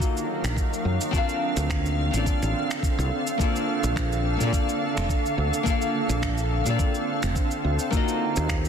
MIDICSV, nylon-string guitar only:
0, 0, Header, 1, 2, 480
1, 0, Start_track
1, 0, Key_signature, -2, "major"
1, 0, Tempo, 566038
1, 967, Time_signature, 4, 2, 24, 8
1, 7367, End_track
2, 0, Start_track
2, 0, Title_t, "Nylon-string guitar"
2, 0, Program_c, 0, 24
2, 0, Note_on_c, 0, 58, 66
2, 0, Note_on_c, 0, 63, 59
2, 0, Note_on_c, 0, 65, 66
2, 0, Note_on_c, 0, 66, 60
2, 0, Note_on_c, 0, 75, 71
2, 931, Note_off_c, 0, 58, 0
2, 938, Note_off_c, 0, 63, 0
2, 941, Note_on_c, 0, 60, 97
2, 945, Note_off_c, 0, 65, 0
2, 951, Note_off_c, 0, 66, 0
2, 953, Note_on_c, 0, 62, 86
2, 958, Note_off_c, 0, 75, 0
2, 966, Note_on_c, 0, 65, 84
2, 982, Note_on_c, 0, 69, 91
2, 996, Note_on_c, 0, 77, 109
2, 1772, Note_off_c, 0, 60, 0
2, 1779, Note_off_c, 0, 62, 0
2, 1785, Note_off_c, 0, 65, 0
2, 1788, Note_on_c, 0, 60, 67
2, 1793, Note_off_c, 0, 69, 0
2, 1799, Note_on_c, 0, 62, 64
2, 1800, Note_off_c, 0, 77, 0
2, 1814, Note_on_c, 0, 65, 62
2, 1827, Note_on_c, 0, 69, 57
2, 1842, Note_on_c, 0, 74, 67
2, 2846, Note_off_c, 0, 60, 0
2, 2852, Note_off_c, 0, 62, 0
2, 2859, Note_off_c, 0, 65, 0
2, 2863, Note_on_c, 0, 58, 81
2, 2866, Note_off_c, 0, 69, 0
2, 2873, Note_off_c, 0, 74, 0
2, 2875, Note_on_c, 0, 62, 74
2, 2891, Note_on_c, 0, 65, 79
2, 2905, Note_on_c, 0, 69, 76
2, 2917, Note_on_c, 0, 74, 87
2, 3693, Note_off_c, 0, 58, 0
2, 3700, Note_off_c, 0, 62, 0
2, 3703, Note_on_c, 0, 58, 67
2, 3707, Note_off_c, 0, 65, 0
2, 3714, Note_off_c, 0, 69, 0
2, 3720, Note_off_c, 0, 74, 0
2, 3720, Note_on_c, 0, 62, 62
2, 3731, Note_on_c, 0, 65, 61
2, 3748, Note_on_c, 0, 69, 61
2, 3758, Note_on_c, 0, 74, 79
2, 4764, Note_off_c, 0, 58, 0
2, 4772, Note_off_c, 0, 62, 0
2, 4776, Note_on_c, 0, 58, 99
2, 4777, Note_off_c, 0, 65, 0
2, 4786, Note_off_c, 0, 69, 0
2, 4788, Note_on_c, 0, 62, 93
2, 4791, Note_off_c, 0, 74, 0
2, 4802, Note_on_c, 0, 65, 89
2, 4816, Note_on_c, 0, 69, 88
2, 4831, Note_on_c, 0, 77, 112
2, 5610, Note_off_c, 0, 58, 0
2, 5616, Note_off_c, 0, 62, 0
2, 5623, Note_off_c, 0, 65, 0
2, 5630, Note_off_c, 0, 69, 0
2, 5630, Note_on_c, 0, 58, 66
2, 5638, Note_off_c, 0, 77, 0
2, 5643, Note_on_c, 0, 62, 58
2, 5657, Note_on_c, 0, 65, 60
2, 5668, Note_on_c, 0, 69, 63
2, 5683, Note_on_c, 0, 74, 79
2, 6687, Note_off_c, 0, 58, 0
2, 6694, Note_off_c, 0, 62, 0
2, 6701, Note_off_c, 0, 65, 0
2, 6704, Note_on_c, 0, 58, 91
2, 6706, Note_off_c, 0, 69, 0
2, 6714, Note_off_c, 0, 74, 0
2, 6716, Note_on_c, 0, 63, 79
2, 6730, Note_on_c, 0, 65, 84
2, 6745, Note_on_c, 0, 66, 79
2, 6756, Note_on_c, 0, 75, 96
2, 7367, Note_off_c, 0, 58, 0
2, 7367, Note_off_c, 0, 63, 0
2, 7367, Note_off_c, 0, 65, 0
2, 7367, Note_off_c, 0, 66, 0
2, 7367, Note_off_c, 0, 75, 0
2, 7367, End_track
0, 0, End_of_file